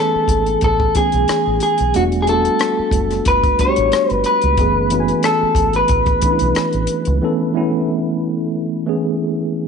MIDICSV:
0, 0, Header, 1, 6, 480
1, 0, Start_track
1, 0, Key_signature, 3, "minor"
1, 0, Tempo, 659341
1, 1410, Time_signature, 4, 2, 24, 8
1, 7046, End_track
2, 0, Start_track
2, 0, Title_t, "Clean electric guitar"
2, 0, Program_c, 0, 27
2, 0, Note_on_c, 0, 69, 80
2, 460, Note_off_c, 0, 69, 0
2, 468, Note_on_c, 0, 69, 84
2, 683, Note_off_c, 0, 69, 0
2, 704, Note_on_c, 0, 68, 87
2, 1176, Note_off_c, 0, 68, 0
2, 1185, Note_on_c, 0, 68, 72
2, 1424, Note_off_c, 0, 68, 0
2, 1429, Note_on_c, 0, 66, 72
2, 1478, Note_off_c, 0, 66, 0
2, 1619, Note_on_c, 0, 68, 59
2, 1658, Note_off_c, 0, 68, 0
2, 1669, Note_on_c, 0, 69, 74
2, 2386, Note_on_c, 0, 71, 84
2, 2401, Note_off_c, 0, 69, 0
2, 2623, Note_off_c, 0, 71, 0
2, 2626, Note_on_c, 0, 73, 93
2, 2990, Note_off_c, 0, 73, 0
2, 2990, Note_on_c, 0, 71, 93
2, 3100, Note_off_c, 0, 71, 0
2, 3103, Note_on_c, 0, 71, 80
2, 3821, Note_off_c, 0, 71, 0
2, 3824, Note_on_c, 0, 69, 74
2, 4192, Note_off_c, 0, 69, 0
2, 4194, Note_on_c, 0, 71, 73
2, 6669, Note_off_c, 0, 71, 0
2, 7046, End_track
3, 0, Start_track
3, 0, Title_t, "Tine electric piano"
3, 0, Program_c, 1, 4
3, 0, Control_c, 1, 64, 127
3, 0, Note_on_c, 1, 52, 55
3, 0, Note_on_c, 1, 57, 56
3, 0, Note_on_c, 1, 59, 53
3, 0, Note_on_c, 1, 61, 54
3, 0, Note_on_c, 1, 68, 70
3, 0, Note_on_c, 1, 80, 62
3, 601, Note_off_c, 1, 52, 0
3, 605, Note_off_c, 1, 57, 0
3, 607, Note_off_c, 1, 59, 0
3, 610, Note_off_c, 1, 61, 0
3, 613, Note_off_c, 1, 80, 0
3, 691, Note_on_c, 1, 52, 48
3, 697, Note_on_c, 1, 57, 52
3, 703, Note_on_c, 1, 59, 48
3, 710, Note_on_c, 1, 61, 53
3, 716, Note_off_c, 1, 68, 0
3, 716, Note_on_c, 1, 68, 53
3, 1343, Note_off_c, 1, 52, 0
3, 1346, Note_off_c, 1, 57, 0
3, 1349, Note_off_c, 1, 59, 0
3, 1353, Note_off_c, 1, 61, 0
3, 1356, Note_off_c, 1, 68, 0
3, 1412, Note_on_c, 1, 55, 64
3, 1416, Note_on_c, 1, 57, 58
3, 1419, Control_c, 1, 64, 0
3, 1424, Note_on_c, 1, 59, 59
3, 1430, Note_on_c, 1, 62, 54
3, 1436, Note_on_c, 1, 66, 68
3, 1537, Control_c, 1, 64, 127
3, 1628, Note_off_c, 1, 55, 0
3, 1631, Note_off_c, 1, 57, 0
3, 1634, Note_off_c, 1, 59, 0
3, 1638, Note_off_c, 1, 62, 0
3, 1641, Note_off_c, 1, 66, 0
3, 1652, Note_on_c, 1, 55, 58
3, 1657, Note_on_c, 1, 57, 57
3, 1663, Note_on_c, 1, 59, 52
3, 1670, Note_on_c, 1, 62, 51
3, 1677, Note_on_c, 1, 66, 72
3, 2521, Note_off_c, 1, 55, 0
3, 2524, Note_off_c, 1, 57, 0
3, 2527, Note_off_c, 1, 59, 0
3, 2530, Note_off_c, 1, 62, 0
3, 2534, Note_off_c, 1, 66, 0
3, 2611, Note_on_c, 1, 55, 53
3, 2618, Note_on_c, 1, 57, 48
3, 2622, Note_on_c, 1, 59, 49
3, 2629, Note_on_c, 1, 62, 49
3, 2634, Note_on_c, 1, 66, 45
3, 2672, Note_off_c, 1, 66, 0
3, 2682, Note_on_c, 1, 67, 61
3, 3263, Note_off_c, 1, 55, 0
3, 3267, Note_off_c, 1, 57, 0
3, 3269, Note_off_c, 1, 59, 0
3, 3272, Note_off_c, 1, 62, 0
3, 3299, Note_off_c, 1, 67, 0
3, 3330, Note_on_c, 1, 52, 62
3, 3337, Note_on_c, 1, 57, 61
3, 3339, Control_c, 1, 64, 0
3, 3342, Note_on_c, 1, 59, 57
3, 3348, Note_on_c, 1, 61, 55
3, 3354, Note_on_c, 1, 68, 66
3, 3478, Control_c, 1, 64, 127
3, 3547, Note_off_c, 1, 52, 0
3, 3551, Note_off_c, 1, 57, 0
3, 3554, Note_off_c, 1, 59, 0
3, 3557, Note_off_c, 1, 61, 0
3, 3560, Note_off_c, 1, 68, 0
3, 3570, Note_on_c, 1, 52, 68
3, 3576, Note_on_c, 1, 57, 59
3, 3581, Note_on_c, 1, 59, 55
3, 3586, Note_on_c, 1, 61, 59
3, 3594, Note_on_c, 1, 66, 50
3, 3632, Note_off_c, 1, 66, 0
3, 3640, Note_on_c, 1, 80, 65
3, 4440, Note_off_c, 1, 52, 0
3, 4443, Note_off_c, 1, 57, 0
3, 4446, Note_off_c, 1, 59, 0
3, 4448, Note_off_c, 1, 61, 0
3, 4475, Note_off_c, 1, 80, 0
3, 4529, Note_on_c, 1, 52, 57
3, 4534, Note_on_c, 1, 57, 51
3, 4542, Note_on_c, 1, 59, 54
3, 4548, Note_on_c, 1, 61, 46
3, 4553, Note_on_c, 1, 62, 48
3, 4592, Note_off_c, 1, 62, 0
3, 4601, Note_on_c, 1, 64, 61
3, 5182, Note_off_c, 1, 52, 0
3, 5185, Note_off_c, 1, 57, 0
3, 5189, Note_off_c, 1, 59, 0
3, 5192, Note_off_c, 1, 61, 0
3, 5218, Note_off_c, 1, 64, 0
3, 5251, Note_on_c, 1, 52, 69
3, 5257, Note_on_c, 1, 57, 65
3, 5263, Note_on_c, 1, 59, 68
3, 5269, Note_on_c, 1, 61, 67
3, 5275, Note_on_c, 1, 69, 87
3, 5468, Note_off_c, 1, 52, 0
3, 5471, Note_off_c, 1, 57, 0
3, 5474, Note_off_c, 1, 59, 0
3, 5477, Note_off_c, 1, 61, 0
3, 5480, Note_off_c, 1, 69, 0
3, 5489, Note_on_c, 1, 52, 74
3, 5495, Note_on_c, 1, 57, 69
3, 5501, Note_on_c, 1, 59, 74
3, 5508, Note_on_c, 1, 61, 70
3, 5513, Note_on_c, 1, 64, 88
3, 6360, Note_off_c, 1, 52, 0
3, 6363, Note_off_c, 1, 57, 0
3, 6366, Note_off_c, 1, 59, 0
3, 6370, Note_off_c, 1, 61, 0
3, 6372, Note_off_c, 1, 64, 0
3, 6449, Note_on_c, 1, 52, 64
3, 6455, Note_on_c, 1, 57, 55
3, 6461, Note_on_c, 1, 59, 60
3, 6467, Note_on_c, 1, 61, 56
3, 6473, Note_on_c, 1, 68, 72
3, 7046, Note_off_c, 1, 52, 0
3, 7046, Note_off_c, 1, 57, 0
3, 7046, Note_off_c, 1, 59, 0
3, 7046, Note_off_c, 1, 61, 0
3, 7046, Note_off_c, 1, 68, 0
3, 7046, End_track
4, 0, Start_track
4, 0, Title_t, "Fingered electric bass"
4, 0, Program_c, 2, 33
4, 208, Note_on_c, 2, 32, 74
4, 399, Note_off_c, 2, 32, 0
4, 459, Note_on_c, 2, 33, 77
4, 646, Note_off_c, 2, 33, 0
4, 830, Note_on_c, 2, 35, 74
4, 914, Note_off_c, 2, 35, 0
4, 1071, Note_on_c, 2, 33, 64
4, 1155, Note_off_c, 2, 33, 0
4, 1313, Note_on_c, 2, 35, 72
4, 1396, Note_off_c, 2, 35, 0
4, 1424, Note_on_c, 2, 28, 87
4, 1799, Note_off_c, 2, 28, 0
4, 2128, Note_on_c, 2, 30, 72
4, 2319, Note_off_c, 2, 30, 0
4, 2380, Note_on_c, 2, 31, 68
4, 2566, Note_off_c, 2, 31, 0
4, 2752, Note_on_c, 2, 33, 69
4, 2835, Note_off_c, 2, 33, 0
4, 2991, Note_on_c, 2, 31, 72
4, 3075, Note_off_c, 2, 31, 0
4, 3228, Note_on_c, 2, 37, 84
4, 3313, Note_off_c, 2, 37, 0
4, 3337, Note_on_c, 2, 30, 87
4, 3715, Note_off_c, 2, 30, 0
4, 4046, Note_on_c, 2, 32, 68
4, 4238, Note_off_c, 2, 32, 0
4, 4297, Note_on_c, 2, 33, 79
4, 4484, Note_off_c, 2, 33, 0
4, 4670, Note_on_c, 2, 35, 74
4, 4754, Note_off_c, 2, 35, 0
4, 4908, Note_on_c, 2, 33, 71
4, 4993, Note_off_c, 2, 33, 0
4, 5150, Note_on_c, 2, 37, 85
4, 5234, Note_off_c, 2, 37, 0
4, 7046, End_track
5, 0, Start_track
5, 0, Title_t, "Muted fingered electric bass strokes"
5, 111, Note_on_c, 9, 29, 34
5, 184, Note_off_c, 9, 29, 0
5, 2031, Note_on_c, 9, 29, 41
5, 2104, Note_off_c, 9, 29, 0
5, 3950, Note_on_c, 9, 29, 40
5, 4023, Note_off_c, 9, 29, 0
5, 7046, End_track
6, 0, Start_track
6, 0, Title_t, "Drums"
6, 202, Note_on_c, 9, 36, 69
6, 208, Note_on_c, 9, 42, 58
6, 275, Note_off_c, 9, 36, 0
6, 281, Note_off_c, 9, 42, 0
6, 338, Note_on_c, 9, 42, 38
6, 411, Note_off_c, 9, 42, 0
6, 445, Note_on_c, 9, 42, 60
6, 454, Note_on_c, 9, 36, 72
6, 518, Note_off_c, 9, 42, 0
6, 527, Note_off_c, 9, 36, 0
6, 580, Note_on_c, 9, 36, 80
6, 653, Note_off_c, 9, 36, 0
6, 690, Note_on_c, 9, 42, 65
6, 695, Note_on_c, 9, 36, 89
6, 763, Note_off_c, 9, 42, 0
6, 768, Note_off_c, 9, 36, 0
6, 816, Note_on_c, 9, 42, 39
6, 889, Note_off_c, 9, 42, 0
6, 931, Note_on_c, 9, 42, 52
6, 941, Note_on_c, 9, 37, 96
6, 1004, Note_off_c, 9, 42, 0
6, 1014, Note_off_c, 9, 37, 0
6, 1167, Note_on_c, 9, 42, 52
6, 1240, Note_off_c, 9, 42, 0
6, 1294, Note_on_c, 9, 42, 38
6, 1367, Note_off_c, 9, 42, 0
6, 1412, Note_on_c, 9, 42, 61
6, 1485, Note_off_c, 9, 42, 0
6, 1543, Note_on_c, 9, 42, 26
6, 1616, Note_off_c, 9, 42, 0
6, 1654, Note_on_c, 9, 42, 51
6, 1726, Note_off_c, 9, 42, 0
6, 1784, Note_on_c, 9, 42, 39
6, 1856, Note_off_c, 9, 42, 0
6, 1888, Note_on_c, 9, 42, 59
6, 1898, Note_on_c, 9, 37, 90
6, 1961, Note_off_c, 9, 42, 0
6, 1971, Note_off_c, 9, 37, 0
6, 2122, Note_on_c, 9, 36, 78
6, 2129, Note_on_c, 9, 42, 63
6, 2194, Note_off_c, 9, 36, 0
6, 2201, Note_off_c, 9, 42, 0
6, 2261, Note_on_c, 9, 42, 40
6, 2272, Note_on_c, 9, 37, 26
6, 2334, Note_off_c, 9, 42, 0
6, 2345, Note_off_c, 9, 37, 0
6, 2368, Note_on_c, 9, 42, 64
6, 2374, Note_on_c, 9, 36, 81
6, 2441, Note_off_c, 9, 42, 0
6, 2447, Note_off_c, 9, 36, 0
6, 2500, Note_on_c, 9, 42, 28
6, 2501, Note_on_c, 9, 36, 86
6, 2573, Note_off_c, 9, 42, 0
6, 2574, Note_off_c, 9, 36, 0
6, 2613, Note_on_c, 9, 42, 64
6, 2616, Note_on_c, 9, 36, 79
6, 2686, Note_off_c, 9, 42, 0
6, 2689, Note_off_c, 9, 36, 0
6, 2739, Note_on_c, 9, 42, 43
6, 2812, Note_off_c, 9, 42, 0
6, 2853, Note_on_c, 9, 42, 49
6, 2863, Note_on_c, 9, 37, 95
6, 2926, Note_off_c, 9, 42, 0
6, 2936, Note_off_c, 9, 37, 0
6, 2982, Note_on_c, 9, 42, 28
6, 3055, Note_off_c, 9, 42, 0
6, 3086, Note_on_c, 9, 42, 57
6, 3098, Note_on_c, 9, 37, 29
6, 3158, Note_off_c, 9, 42, 0
6, 3171, Note_off_c, 9, 37, 0
6, 3214, Note_on_c, 9, 42, 41
6, 3287, Note_off_c, 9, 42, 0
6, 3330, Note_on_c, 9, 42, 62
6, 3331, Note_on_c, 9, 36, 90
6, 3403, Note_off_c, 9, 42, 0
6, 3404, Note_off_c, 9, 36, 0
6, 3569, Note_on_c, 9, 42, 57
6, 3642, Note_off_c, 9, 42, 0
6, 3700, Note_on_c, 9, 42, 34
6, 3773, Note_off_c, 9, 42, 0
6, 3806, Note_on_c, 9, 42, 65
6, 3816, Note_on_c, 9, 37, 89
6, 3878, Note_off_c, 9, 42, 0
6, 3888, Note_off_c, 9, 37, 0
6, 4039, Note_on_c, 9, 36, 81
6, 4046, Note_on_c, 9, 42, 57
6, 4112, Note_off_c, 9, 36, 0
6, 4119, Note_off_c, 9, 42, 0
6, 4174, Note_on_c, 9, 42, 40
6, 4247, Note_off_c, 9, 42, 0
6, 4281, Note_on_c, 9, 42, 64
6, 4291, Note_on_c, 9, 36, 74
6, 4354, Note_off_c, 9, 42, 0
6, 4363, Note_off_c, 9, 36, 0
6, 4412, Note_on_c, 9, 42, 29
6, 4417, Note_on_c, 9, 36, 85
6, 4485, Note_off_c, 9, 42, 0
6, 4490, Note_off_c, 9, 36, 0
6, 4525, Note_on_c, 9, 42, 66
6, 4532, Note_on_c, 9, 36, 80
6, 4598, Note_off_c, 9, 42, 0
6, 4605, Note_off_c, 9, 36, 0
6, 4652, Note_on_c, 9, 42, 44
6, 4725, Note_off_c, 9, 42, 0
6, 4768, Note_on_c, 9, 42, 52
6, 4778, Note_on_c, 9, 37, 101
6, 4841, Note_off_c, 9, 42, 0
6, 4851, Note_off_c, 9, 37, 0
6, 4896, Note_on_c, 9, 42, 30
6, 4969, Note_off_c, 9, 42, 0
6, 5002, Note_on_c, 9, 42, 61
6, 5075, Note_off_c, 9, 42, 0
6, 5134, Note_on_c, 9, 42, 36
6, 5206, Note_off_c, 9, 42, 0
6, 7046, End_track
0, 0, End_of_file